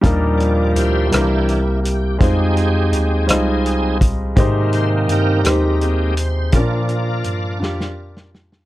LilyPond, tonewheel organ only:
<<
  \new Staff \with { instrumentName = "Tonewheel organ" } { \time 6/8 \key ees \major \tempo 4. = 55 << { r8 d''8 c''4 r8 g'8 | aes'2~ aes'8 r8 | r8 c''8 bes'4 r8 c''8 | d''2~ d''8 r8 | } \\ { r4 <fes' g'>4. r8 | c'2~ c'8 r8 | r4 <ees' g'>4. r8 | <f' bes'>2~ <f' bes'>8 r8 | } >> }
  \new Staff \with { instrumentName = "Tonewheel organ" } { \time 6/8 \key ees \major <f g bes>4. <e bes d'>8 r4 | <aes ees' g'>4. r4. | <ees bes c'>4. r8 <aes bes c'>8 r8 | <f bes d'>4. <f bes d'>8 r4 | }
>>